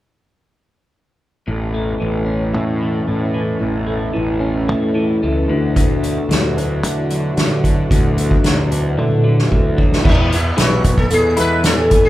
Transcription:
1.48 picked electric bass A1, harmonium E2 B2, clean electric guitar A2, string machine C#4 E4 A4
1.74 clean electric guitar A3
2.00 picked electric bass A1, clean electric guitar E3
2.26 clean electric guitar C#4
2.54 picked electric bass A2, clean electric guitar A3
2.81 clean electric guitar E3
3.08 picked electric bass A2, clean electric guitar A3
3.34 clean electric guitar E3
3.60 picked electric bass A1, clean electric guitar A2
3.87 clean electric guitar A3
4.14 picked electric bass A1, clean electric guitar E3
4.40 clean electric guitar C#4
4.68 picked electric bass A2, clean electric guitar A3
4.95 clean electric guitar E3
5.23 picked electric bass C#2, clean electric guitar A3
5.47 picked electric bass D2, clean electric guitar D3, string machine D4 F#4
5.76 clean electric guitar D3, kick, closed hi-hat
6.03 clean electric guitar A3, closed hi-hat
6.29 picked electric bass D2, clean electric guitar F#3, snare, closed hi-hat
6.57 clean electric guitar D4, closed hi-hat
6.83 picked electric bass D3, clean electric guitar A3, closed hi-hat
7.10 clean electric guitar F#3, closed hi-hat
7.37 picked electric bass D3, clean electric guitar A3, snare, closed hi-hat
7.64 clean electric guitar F#3, kick, closed hi-hat
7.91 picked electric bass D2, clean electric guitar D3, kick, closed hi-hat
8.17 clean electric guitar A3, closed hi-hat
8.31 kick
8.44 picked electric bass D2, clean electric guitar F#3, snare, closed hi-hat
8.72 clean electric guitar D4, closed hi-hat
8.98 picked electric bass D3, clean electric guitar A3, high tom
9.11 high tom
9.24 clean electric guitar F#3
9.38 snare
9.52 picked electric bass D2, clean electric guitar A3, kick
9.78 clean electric guitar F#3, kick
9.92 snare
10.05 picked electric bass E2, harmonium E2 B2, clean electric guitar E3 G#3 B3 E4, string machine B4 E5 G#5, kick, crash
10.09 sitar D4
10.32 sitar E4, muted clean electric guitar stroke, closed hi-hat
10.57 picked electric bass B1, clean electric guitar E3 G#3 B3 E4, snare, closed hi-hat, tambourine
10.61 sitar F#4
10.84 muted clean electric guitar stroke, kick, closed hi-hat
10.98 sitar A4, kick
11.10 picked electric bass E2, sitar G#4, muted clean electric guitar stroke, closed hi-hat
11.37 picked electric bass E2, clean electric guitar E3 G#3 B3 E4, sitar B4, closed hi-hat
11.64 sitar A4, muted clean electric guitar stroke, snare, closed hi-hat, tambourine
11.90 muted clean electric guitar stroke, kick, closed hi-hat
12.05 sitar G#4

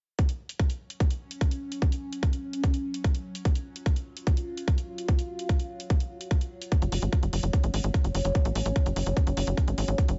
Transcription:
0.19 synth drone F#3 C#4, kick, closed hi-hat
0.29 closed hi-hat
0.49 closed hi-hat
0.59 kick, closed hi-hat
0.70 closed hi-hat
0.90 closed hi-hat
1.00 kick, closed hi-hat
1.11 closed hi-hat
1.31 closed hi-hat
1.41 kick, closed hi-hat
1.51 closed hi-hat
1.72 closed hi-hat
1.82 kick, closed hi-hat
1.92 closed hi-hat
2.13 closed hi-hat
2.23 kick, closed hi-hat
2.33 closed hi-hat
2.53 closed hi-hat
2.64 kick, closed hi-hat
2.74 closed hi-hat
2.94 closed hi-hat
3.04 kick, closed hi-hat
3.15 closed hi-hat
3.35 closed hi-hat
3.45 synth drone F4, kick, closed hi-hat
3.55 closed hi-hat
3.76 closed hi-hat
3.86 kick, closed hi-hat
3.96 closed hi-hat
4.17 closed hi-hat
4.27 kick, closed hi-hat
4.37 closed hi-hat
4.57 closed hi-hat
4.68 kick, closed hi-hat
4.78 closed hi-hat
4.98 closed hi-hat
5.08 kick, closed hi-hat
5.19 closed hi-hat
5.39 closed hi-hat
5.49 kick, closed hi-hat
5.60 closed hi-hat
5.80 closed hi-hat
5.90 kick, closed hi-hat
6.00 closed hi-hat
6.21 closed hi-hat
6.31 kick, closed hi-hat
6.41 closed hi-hat
6.62 closed hi-hat
6.72 synth drone C#4, kick, closed hi-hat
6.82 analog synth bass F#1, closed hi-hat
6.92 analog synth bass F#1, open hi-hat
7.02 analog synth bass G#1, closed hi-hat
7.13 kick, closed hi-hat
7.23 analog synth bass F#1, closed hi-hat
7.33 analog synth bass F#1, open hi-hat
7.43 analog synth bass F#1, closed hi-hat
7.53 kick, closed hi-hat
7.64 analog synth bass G#1, closed hi-hat
7.74 analog synth bass G#1, open hi-hat
7.84 analog synth bass G#1, closed hi-hat
7.94 kick, closed hi-hat
8.04 analog synth bass F#1, closed hi-hat
8.15 analog synth bass F#1, open hi-hat
8.25 analog synth bass F#1, closed hi-hat
8.35 kick, closed hi-hat
8.45 analog synth bass A1, closed hi-hat
8.55 analog synth bass A1, open hi-hat
8.66 analog synth bass A1, closed hi-hat
8.76 kick, closed hi-hat
8.86 analog synth bass F#1, closed hi-hat
8.96 analog synth bass F#1, open hi-hat
9.06 analog synth bass F#1, closed hi-hat
9.17 kick, closed hi-hat
9.27 analog synth bass F#1, closed hi-hat
9.37 analog synth bass F#1, open hi-hat
9.47 analog synth bass F#1, closed hi-hat
9.57 kick, closed hi-hat
9.68 analog synth bass G#1, closed hi-hat
9.78 analog synth bass G#1, open hi-hat
9.88 analog synth bass G#1, closed hi-hat
9.98 kick, closed hi-hat
10.08 analog synth bass F#1, closed hi-hat

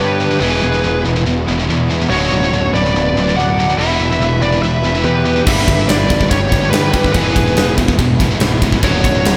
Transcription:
Already playing: lead electric guitar B4
0.00 distorted electric guitar G2 D3 G3 B3 D4 G4, picked electric bass G2, lead electric guitar G4
0.21 distorted electric guitar G2 D3
0.31 distorted electric guitar G2 D3
0.40 picked electric bass E1, distorted electric guitar E2 B2 E3 G#3 B3 E4, lead electric guitar G#4 B4
0.62 picked electric bass E1, distorted electric guitar E2 B2
0.72 distorted electric guitar E2 B2
0.83 picked electric bass E1, distorted electric guitar E2 B2
1.05 picked electric bass E1, distorted electric guitar E2 B2
1.17 distorted electric guitar E2 B2
1.26 picked electric bass E1, distorted electric guitar E2 B2
1.46 picked electric bass E1, distorted electric guitar E2 B2 E3 G#3 B3 E4
1.58 distorted electric guitar E2 B2
1.68 distorted electric guitar E2 B2 E3 G#3 B3 E4, picked electric bass E2
1.90 distorted electric guitar E2 B2
2.00 distorted electric guitar E2 B2
2.09 picked electric bass D1, distorted electric guitar B1 F#2 B2 F#3 D4, lead electric guitar F#4 C#5
2.31 picked electric bass D1, distorted electric guitar B1 F#2
2.43 distorted electric guitar B1 F#2
2.52 picked electric bass D1, distorted electric guitar B1 F#2
2.73 picked electric bass D1, distorted electric guitar B1 F#2, lead electric guitar B4 D5
2.85 distorted electric guitar B1 F#2
2.95 picked electric bass D1, distorted electric guitar B1 F#2
3.15 picked electric bass D1, distorted electric guitar B1 F#2 B2 F#3 D4
3.27 distorted electric guitar B1 F#2
3.36 picked electric bass D1, distorted electric guitar B1 F#2 B2 F#3 D4, lead electric guitar D5 F#5
3.59 distorted electric guitar B1 F#2
3.70 distorted electric guitar B1 F#2
3.78 picked electric bass E1, distorted electric guitar E2 B2 E3 G3 B3 E4, lead electric guitar B4 E5
3.99 picked electric bass E1, distorted electric guitar E2 B2
4.11 distorted electric guitar E2 B2
4.20 picked electric bass E1, distorted electric guitar E2 B2
4.41 picked electric bass E1, distorted electric guitar E2 B2, lead electric guitar B4 D5
4.54 distorted electric guitar E2 B2
4.62 picked electric bass E1, distorted electric guitar E2 B2, lead electric guitar B4 E5
4.83 picked electric bass E1, distorted electric guitar E2 B2 E3 G3 B3 E4
4.95 distorted electric guitar E2 B2
5.03 distorted electric guitar E2 B2 E3 G3 B3 E4, picked electric bass E2, lead electric guitar G4 B4
5.26 distorted electric guitar E2 B2
5.36 distorted electric guitar E2 B2
5.45 picked electric bass G1, distorted electric guitar G2 D3 G3 B3 D4 G4, lead electric guitar B4 E5, kick, crash
5.67 picked electric bass G1, distorted electric guitar G2 D3, kick, ride
5.78 distorted electric guitar G2 D3
5.88 picked electric bass G1, distorted electric guitar G2 D3, lead electric guitar B4 D5, snare, ride
6.08 picked electric bass G1, distorted electric guitar G2 D3, kick, ride
6.18 distorted electric guitar G2 D3, kick
6.28 picked electric bass G1, distorted electric guitar G2 D3, lead electric guitar G4 C#5, kick, ride
6.49 picked electric bass G1, distorted electric guitar G2 D3 G3 B3 D4 G4, kick, ride
6.53 distorted electric guitar G2
6.60 distorted electric guitar G2 D3
6.70 picked electric bass G2, distorted electric guitar G2 D3 G3 B3, lead electric guitar B4, ride
6.74 distorted electric guitar D4 G4, lead electric guitar G4, snare
6.93 distorted electric guitar G2 D3, kick, ride
7.03 distorted electric guitar G2 D3, kick
7.13 picked electric bass E1, distorted electric guitar E2 B2 E3 G#3 B3 E4, lead electric guitar G#4 B4, kick, ride
7.36 picked electric bass E1, distorted electric guitar E2 B2, kick, ride
7.46 distorted electric guitar E2 B2
7.55 picked electric bass E1, distorted electric guitar E2 B2, snare, ride
7.77 picked electric bass E1, distorted electric guitar E2 B2, kick, ride
7.88 distorted electric guitar E2 B2, kick
7.98 picked electric bass E1, distorted electric guitar E2 B2, kick, ride
8.19 picked electric bass E1, distorted electric guitar E2 B2 E3 G#3 B3 E4, kick, ride
8.31 distorted electric guitar E2 B2
8.39 picked electric bass C#1, distorted electric guitar E2 B2 E3 G#3 B3 E4, snare, ride
8.62 distorted electric guitar E2 B2, kick, ride
8.72 distorted electric guitar E2 B2, kick
8.80 picked electric bass D1, distorted electric guitar B1 F#2 B2 F#3 D4, kick, ride
8.85 lead electric guitar F#4 C#5
9.03 picked electric bass D1, distorted electric guitar B1 F#2, kick, ride
9.15 distorted electric guitar B1 F#2
9.25 picked electric bass D1, distorted electric guitar B1 F#2, snare, ride

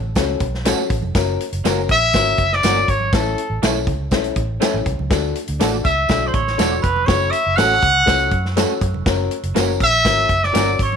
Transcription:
Already playing: fingered electric bass A1
0.16 fingered electric bass C#2, upright piano C#4 F#4 A4, kick, snare, closed hi-hat, tambourine, muted conga
0.40 fingered electric bass B1, kick, closed hi-hat, muted conga
0.54 snare
0.65 clean electric guitar A3 C#4 F#4 A4, upright piano C#4 F#4 A4, snare, closed hi-hat, tambourine, high conga
0.90 fingered electric bass A1, kick, closed hi-hat
1.02 fingered electric bass F1, high conga
1.15 fingered electric bass F#1, upright piano C#4 F#4 A#4, kick, snare, closed hi-hat, tambourine
1.40 closed hi-hat
1.52 fingered electric bass F#1, closed hi-hat
1.64 fingered electric bass F#1, clean electric guitar A#3 C#4 F#4 A#4, upright piano C#4 F#4 A#4, snare, closed hi-hat, tambourine, high conga
1.89 fingered electric bass A#1, trumpet E5, kick, closed hi-hat
2.13 fingered electric bass G#1, upright piano C#4 F#4 A#4, kick, snare, closed hi-hat, tambourine, muted conga, low conga
2.38 fingered electric bass F#1, kick, closed hi-hat, muted conga, low conga
2.52 trumpet D5, snare
2.63 fingered electric bass G1, clean electric guitar A#3 C#4 F#4 A#4, upright piano C#4 F#4 A#4, snare, closed hi-hat, tambourine, high conga
2.88 fingered electric bass G#1, trumpet C#5, kick, closed hi-hat
3.00 high conga
3.13 fingered electric bass A1, upright piano C#4 E4 A4, trumpet A4, kick, snare, closed hi-hat, tambourine
3.38 closed hi-hat
3.50 fingered electric bass A1
3.62 fingered electric bass B1, clean electric guitar A3 C#4 E4 A4, upright piano C#4 E4 A4, snare, closed hi-hat, tambourine, high conga
3.87 fingered electric bass C#2, kick, closed hi-hat, low conga
4.11 fingered electric bass B1, upright piano C#4 E4 A4, kick, snare, closed hi-hat, tambourine, muted conga
4.24 closed hi-hat
4.36 fingered electric bass A1, kick, closed hi-hat, muted conga
4.60 clean electric guitar A3 C#4 E4 A4, upright piano C#4 E4 A4, snare, closed hi-hat, tambourine, high conga
4.74 fingered electric bass A1, high conga
4.86 fingered electric bass C2, kick, closed hi-hat
4.99 fingered electric bass C#2, high conga
5.10 fingered electric bass D2, upright piano D4 F#4 A4, kick, snare, closed hi-hat, tambourine
5.35 closed hi-hat
5.47 fingered electric bass D2, closed hi-hat
5.59 fingered electric bass A1, clean electric guitar A3 D4 F#4 A4, upright piano D4 F#4 A4, snare, closed hi-hat, tambourine, high conga
5.85 fingered electric bass C#2, trumpet E5, glockenspiel E6, kick, closed hi-hat
6.09 fingered electric bass B1, upright piano D4 F#4 A4, kick, snare, closed hi-hat, tambourine, muted conga, low conga
6.27 trumpet C5, glockenspiel C6
6.33 fingered electric bass A1, trumpet C#5, glockenspiel C#6, kick, closed hi-hat, muted conga, low conga
6.47 snare
6.57 fingered electric bass E1, clean electric guitar A3 D4 F#4 A4, upright piano D4 F#4 A4, snare, closed hi-hat, tambourine, high conga
6.82 fingered electric bass F1, trumpet B4, glockenspiel B5, kick, closed hi-hat
6.96 high conga
7.06 fingered electric bass F#1, upright piano C#4 F#4 A4, trumpet C#5, glockenspiel C#6, kick, snare, closed hi-hat, tambourine, muted conga
7.30 trumpet E5, glockenspiel E6, closed hi-hat
7.46 fingered electric bass F#1
7.56 fingered electric bass A1, clean electric guitar A3 C#4 F#4 A4, upright piano C#4 F#4 A4, trumpet F#5, glockenspiel F#6, snare, closed hi-hat, tambourine, high conga
7.82 fingered electric bass C#2, kick, closed hi-hat, low conga
8.06 fingered electric bass C#2, upright piano C#4 F#4 A4, kick, snare, closed hi-hat, tambourine, muted conga
8.19 closed hi-hat
8.31 fingered electric bass F#2, kick, closed hi-hat, muted conga
8.45 snare
8.56 clean electric guitar A3 C#4 F#4 A4, upright piano C#4 F#4 A4, snare, closed hi-hat, tambourine, high conga
8.81 fingered electric bass F#2, kick, closed hi-hat
8.94 fingered electric bass F1, high conga
9.06 fingered electric bass F#1, upright piano C#4 F#4 A#4, kick, snare, closed hi-hat, tambourine
9.31 closed hi-hat
9.43 fingered electric bass F#1, closed hi-hat
9.55 fingered electric bass F#1, clean electric guitar A#3 C#4 F#4 A#4, upright piano C#4 F#4 A#4, snare, closed hi-hat, tambourine, high conga
9.80 fingered electric bass A#1, trumpet E5, glockenspiel E6, kick, closed hi-hat
10.04 fingered electric bass G#1, upright piano C#4 F#4 A#4, kick, snare, closed hi-hat, tambourine, muted conga, low conga
10.29 fingered electric bass F#1, kick, closed hi-hat, muted conga, low conga
10.44 trumpet D5, glockenspiel D6, snare
10.53 fingered electric bass G1, clean electric guitar A#3 C#4 F#4 A#4, upright piano C#4 F#4 A#4, snare, closed hi-hat, tambourine, high conga
10.79 fingered electric bass G#1, trumpet C#5, glockenspiel C#6, kick, closed hi-hat
10.92 high conga

